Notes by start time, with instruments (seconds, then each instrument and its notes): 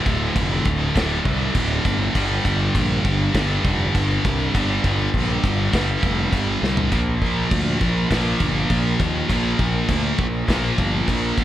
Already playing: distorted electric guitar D2 A2 D3
0.06 picked electric bass D1, kick, crash
0.36 picked electric bass F1, kick, crash
0.65 picked electric bass D1, kick, crash
0.95 picked electric bass D1, distorted electric guitar D2 A2 D3, kick, snare, crash
1.25 picked electric bass C2, kick, crash
1.55 picked electric bass D1, kick, crash
1.85 picked electric bass G1, kick, crash
2.13 picked electric bass G1, distorted electric guitar G2 D3 G3, kick, crash
2.45 picked electric bass G1, kick, crash
2.75 picked electric bass A#1, kick, crash
3.05 picked electric bass G1, kick, crash
3.33 picked electric bass G1, distorted electric guitar G2 D3 G3, kick, snare, crash
3.64 picked electric bass F1, kick, crash
3.95 picked electric bass G1, kick, crash
4.25 picked electric bass C2, kick, crash
4.53 picked electric bass G1, distorted electric guitar G2 D3 G3, kick, crash
4.84 picked electric bass G1, kick, crash
5.14 picked electric bass A#1, kick, crash
5.44 picked electric bass G1, kick, crash
5.71 picked electric bass G1, distorted electric guitar G2 D3 G3, kick, snare, crash
6.03 picked electric bass F1, kick, crash
6.32 picked electric bass G1, kick, crash
6.62 picked electric bass C2, snare
6.77 floor tom
6.91 picked electric bass A#1, distorted electric guitar A#2 F3 A#3, kick, crash
7.22 picked electric bass A#1, kick, crash
7.51 picked electric bass D2, kick, crash
7.81 picked electric bass A#1, kick, crash
8.11 picked electric bass A#1, distorted electric guitar A#2 F3 A#3, kick, snare, crash
8.40 picked electric bass G1, kick, crash
8.70 picked electric bass A#1, kick, crash
9.00 picked electric bass D#2, kick, crash
9.29 picked electric bass A#1, distorted electric guitar A#2 F3 A#3, kick, crash
9.59 picked electric bass A#1, kick, crash
9.89 picked electric bass D2, kick, crash
10.18 picked electric bass A#1, kick, crash
10.48 picked electric bass A#1, distorted electric guitar A#2 F3 A#3, kick, snare, crash
10.78 picked electric bass G1, kick, crash
11.08 picked electric bass A#1, kick, crash
11.38 picked electric bass D#1, kick, crash